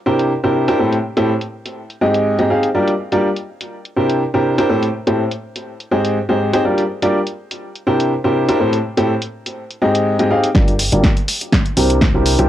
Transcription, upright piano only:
0.06 C3 D4 E4 G4 A#4 C5
0.44 C3 D4 E4 G4 A#4 C5
0.68 D4 E4 G4 A#4 C5
0.79 A2 C4 E4 G4 A4 C5
1.17 A2 C4 E4 G4 A4 C5
2.01 G#2 C4 D#4 G4 G#4 D#5
2.39 G#2 C4 D#4 G4 G#4 D#5
2.50 C4 D#4 G4 G#4 F5
2.74 G3 D4 F4 G4 A#4 D5
3.12 G3 D4 F4 G4 A#4 D5
3.96 C3 D4 E4 G4 A#4 C5
4.34 C3 D4 E4 G4 A#4 C5
4.58 D4 E4 G4 A#4 C5
4.70 A2 C4 E4 G4 A4 C5
5.07 A2 C4 E4 G4 A4 C5
5.92 G#2 C4 D#4 G4 G#4 C5
6.29 G#2 C4 D#4 G4 G#4 C5
6.53 C4 D#4 G4 G#4 C5
6.65 G3 D4 F4 G4 A#4 D5
7.02 G3 D4 F4 G4 A#4 D5
7.87 C3 D4 E4 G4 A#4 C5
8.24 C3 D4 E4 G4 A#4 C5
8.49 D4 E4 G4 A#4 C5
8.60 A2 C4 E4 G4 A4 C5
8.97 A2 C4 E4 G4 A4 C5
9.82 G#2 C4 D#4 G4 G#4 D#5
10.19 G#2 C4 D#4 G4 G#4 D#5
10.31 C4 D#4 G4 G#4 F5
10.55 G3 D4 F4 A#4 D5
10.92 G3 D4 F4 G4 A#4 D5
11.77 C3 D4 E4 G4 A#4 C5
12.14 C3 D4 E4 G4 A#4 C5
12.39 D4 E4 G4 A#4 C5

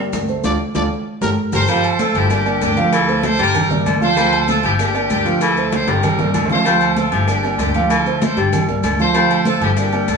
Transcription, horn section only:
1.54 A4 C5
2.00 F4 A4
2.16 E4 G4
2.32 D4 G4
2.63 D4 G4
2.94 F4 A4
3.24 A4 C5
3.40 G4 A#4
4.02 A4 C5
4.49 F4 A4
4.64 E4 G4
4.79 D4 G4
5.11 D4 G4
5.41 F4 A4
5.73 A4 C5
5.88 G4 A#4
6.51 A4 C5
6.98 F4 A4
7.13 E4 G4
7.29 D4 G4
7.61 D4 G4
7.91 F4 A4
8.23 A4 C5
9.00 A4 C5
9.48 F4 A4
9.63 E4 G4
9.79 D4 G4
10.10 D4 A4

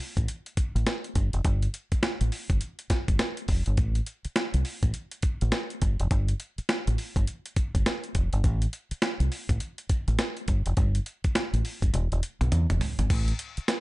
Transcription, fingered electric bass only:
0.17 A1
0.57 muted fingered electric bass stroke
0.75 A1
1.16 G1
1.33 F1
1.45 G1
1.92 muted fingered electric bass stroke
2.21 A1
2.50 G1
2.90 muted fingered electric bass stroke
3.08 G1
3.49 F1
3.67 G1
3.78 A1
4.25 muted fingered electric bass stroke
4.54 C2
4.83 A1
5.23 muted fingered electric bass stroke
5.42 A1
5.82 G1
6.00 F1
6.11 G1
6.58 muted fingered electric bass stroke
6.88 A1
7.16 G1
7.57 muted fingered electric bass stroke
7.75 G1
8.15 F1
8.33 G1
8.44 A1
8.91 muted fingered electric bass stroke
9.20 C2
9.49 A1
9.90 muted fingered electric bass stroke
10.08 A1
10.48 G1
10.66 F1
10.77 G1
11.25 muted fingered electric bass stroke
11.53 A1
11.82 G1
11.94 E1
12.12 E1
12.41 B1
12.52 E2
12.70 E1
12.99 G#1
13.10 A1
13.58 muted fingered electric bass stroke

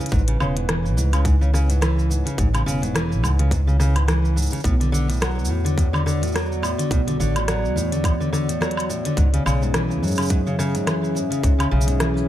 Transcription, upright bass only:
0.12 A1
0.40 E1
0.97 C#2
2.38 A1
2.66 E1
3.23 C#2
4.64 B1
5.49 E2
6.91 B1
7.20 A1
7.76 E2
9.17 C#2
9.46 B1
10.02 F#2
11.43 C#2
11.72 B1

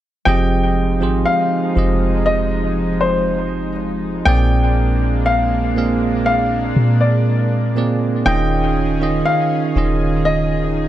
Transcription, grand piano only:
0.25 G5
1.25 F5
2.26 D#5
3.01 C5
4.25 G5
5.26 F5
6.26 F5
7.01 D5
8.26 G5
9.25 F5
10.25 D#5

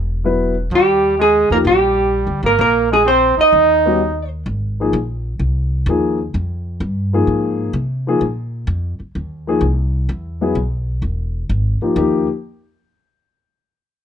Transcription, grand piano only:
0.24 F#3 B3 E4 B4
1.51 F3 A#3 D#4 G4
3.86 G3 B3 C#4 F#4
4.80 F3 A#3 D#4 G#4
5.88 F3 A#3 D#4 G#4
7.13 F3 A#3 D#4 G#4
8.07 F3 A#3 D#4 G#4
9.47 F3 A#3 D#4 G#4
10.41 F#3 B3 E4 G#4
11.82 F3 A#3 D#4 G4
11.96 F3 A#3 D#4 G4

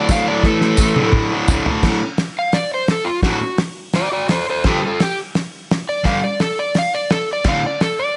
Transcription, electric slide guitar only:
0.11 F5
0.28 D5
0.46 A4
2.39 F5
2.54 D5
2.74 C5
2.91 A4
3.04 F4
3.24 F#4
3.96 F#4 D5
4.12 F#4 D5
4.30 A4 C5
4.49 A4 C5
4.66 F4 A4
4.86 F4 A4
5.03 G4
5.89 D5
6.06 F5
6.24 D5
6.41 A4
6.59 D5
6.79 F5
6.95 D5
7.11 A4
7.33 D5
7.48 F5
7.66 D5
7.81 A4
7.99 D5

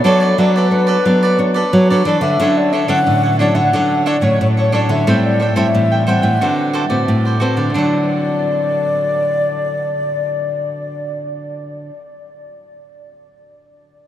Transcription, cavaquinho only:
0.04 D4 A4 B4 D5
0.20 A4 B4 D5
0.38 D4 A4 B4 D5
0.56 A4 B4 D5
0.87 A4 B4 D5
1.05 D4 A4 B4 D5
1.23 A4 B4 D5
1.39 muted cavaquinho stroke
1.54 A4 B4 D5
1.90 A4 B4 D5
2.06 D4 A4 B4 D5
2.22 A4 B4 D5
2.40 D4 A4 C#5 F#5
2.73 D4 A4 C#5 F#5
2.88 D4 A4 C#5 F#5
3.23 A4 C#5 F#5
3.39 D4 A4 C#5 F#5
3.55 A4 C#5 F#5
3.73 D4 A4 C#5 F#5
4.06 D4 A4 C#5 F#5
4.22 A4 C#5 F#5
4.57 A4 C#5 F#5
4.72 D4 A4 C#5 F#5
4.89 A4 C#5 F#5
5.07 A4 C5 E5 G5
5.40 A4 C5 E5 G5
5.56 A4 C5 E5 G5
5.92 C5 E5 G5
6.07 A4 C5 E5 G5
6.22 C5 E5 G5
6.41 F#4 A4 C5 D5
6.73 F#4 A4 C5 D5
6.90 A4 C5 D5
7.25 A4 C5 D5
7.40 F#4 A4 C5 D5
7.56 A4 C5 D5
7.74 D4 A4
7.78 F#5

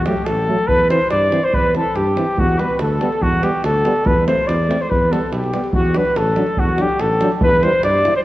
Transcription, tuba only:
0.27 A1
0.69 E2
1.12 G2
1.53 E2
1.95 G2
2.37 E2
2.79 D2
3.21 E2
3.63 D2
4.05 E2
4.48 E2
4.90 E2
5.32 B1
5.74 E2
6.16 A1
6.58 E2
7.00 A1
7.42 E2
7.84 G2

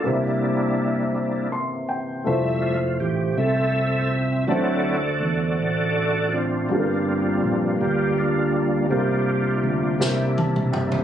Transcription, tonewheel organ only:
0.04 G3 A#3 D4 E4
1.14 A#3 D4 E4
2.26 G3 A3 E5
2.62 F4
3.00 G4
3.37 C4 A4 E5
4.47 F#3 C4 E4 F#4 A4 D5
6.32 C4 D4 F4
6.69 G3 A#3 F4
7.81 G4
8.18 A#3 D4 F4
8.89 A#3 D4 F4 G4
9.99 A#3 D4 E4

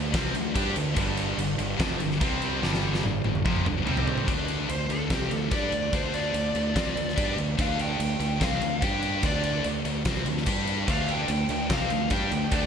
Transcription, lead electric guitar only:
4.70 C5
4.92 A4
5.13 G4
5.34 A4
5.54 D5
5.95 C5
6.15 D5
7.61 F5
7.81 G5
8.43 F5
8.84 G5
9.26 D5
10.90 F5
11.11 G5
11.73 F5
12.12 G5
12.54 D5

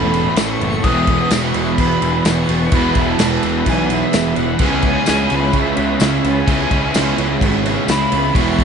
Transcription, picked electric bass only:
Already playing: E1
0.36 A1
0.61 F#1
0.84 E1
1.32 E1
1.55 E1
1.78 E1
2.02 E1
2.25 E1
2.49 E1
2.72 E1
2.96 E1
3.20 E1
3.44 E1
3.67 B1
4.15 E1
4.37 E1
4.60 C#2
5.09 C#2
5.32 C#2
5.54 C#2
5.78 C#2
6.01 C#2
6.25 C#2
6.48 C#2
6.71 C#2
6.95 C#2
7.18 C#2
7.41 G#1
7.88 C#2
8.13 C#2
8.35 E1

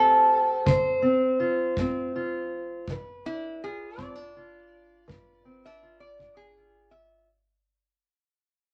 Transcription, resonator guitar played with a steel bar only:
Already playing: A4
3.26 E4
3.64 G#4
4.01 D5
5.66 E5
6.00 D5
6.37 G#4
6.91 E5

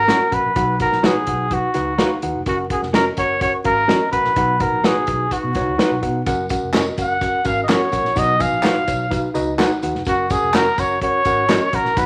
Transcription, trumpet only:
Already playing: A#4
0.34 B4
0.82 A#4
1.06 G#4
1.54 F#4
2.48 F#4
2.71 G#4
2.95 A#4
3.18 C#5
3.42 C#5
3.66 A#4
4.12 B4
4.62 A#4
4.86 G#4
5.32 F#4
7.01 F#5
7.47 F5
7.63 D#5
7.70 C#5
8.18 D#5
8.41 F5
10.08 F#4
10.32 G#4
10.56 A#4
10.79 C#5
11.03 C#5
11.75 A#4
11.98 B4

